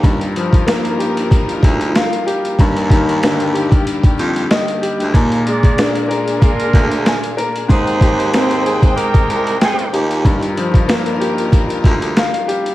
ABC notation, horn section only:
X:1
M:4/4
L:1/16
Q:"Swing 16ths" 1/4=94
K:Gphr
V:1 name="Horn section"
z16 | z16 | z2 [ABd]4 z2 [DFB]4- [DFB] z3 | [CAc]4 [CAc]4 [EGB]4 [CEA]2 z2 |
z16 |]